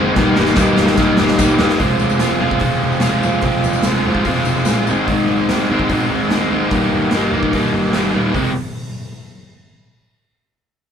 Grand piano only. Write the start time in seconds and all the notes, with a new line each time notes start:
Already playing: F#1
0.16 G1
0.37 G1
0.57 G1
0.77 G1
0.98 G1
1.19 G1
1.39 G1
1.59 G1
1.80 F1
1.99 F1
2.20 F1
2.41 F1
2.61 F1
2.81 F1
3.02 F1
3.22 F1
3.43 F1
3.63 F1
3.82 F1
4.04 F1
4.26 F1
4.44 F1
4.65 A#1
4.86 G#1
5.09 G#1
5.28 G#1
5.48 G#1
5.69 G#1
5.89 G#1
6.09 G#1
6.29 G#1
6.50 G#1
6.71 G1
6.91 G1
7.10 G1
7.31 G1
7.53 G1
7.72 G1
7.92 G1
8.13 D#1
8.35 F1